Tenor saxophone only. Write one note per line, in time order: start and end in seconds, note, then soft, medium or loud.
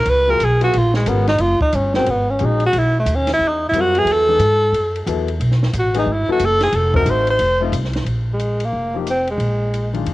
0.00 0.11 A#4 loud
0.09 0.32 B4 loud
0.30 0.46 A#4 loud
0.45 0.63 G#4 medium
0.64 0.79 F#4 medium
0.78 0.95 F4 loud
0.96 1.10 G#3 medium
1.09 1.28 B3 medium
1.28 1.42 D#4 loud
1.41 1.61 F4 loud
1.62 1.77 D#4 loud
1.75 1.95 C#4 medium
1.96 2.11 C4 medium
2.10 2.32 B3 medium
2.30 2.46 C#4 medium
2.45 2.64 D#4 medium
2.66 2.80 F#4 loud
2.78 2.97 E4 loud
3.00 3.17 A3 medium
3.15 3.32 C#4 loud
3.33 3.49 E4 loud
3.48 3.65 D#4 medium
3.69 3.82 E4 loud
3.80 4.00 F#4 loud
3.98 4.14 G#4 loud
4.12 5.10 A4 loud
5.79 5.96 F#4 medium
5.99 6.14 D#4 medium
6.13 6.31 E4 medium
6.32 6.47 F#4 loud
6.45 6.63 A4 loud
6.63 6.77 G#4 loud
6.76 6.96 A4 medium
6.96 7.12 A#4 loud
7.10 7.30 C5 medium
7.31 7.60 C5 loud
8.33 8.66 G#3 medium
8.65 8.96 A#3 medium
9.10 9.28 C4 medium
9.31 9.92 G#3 medium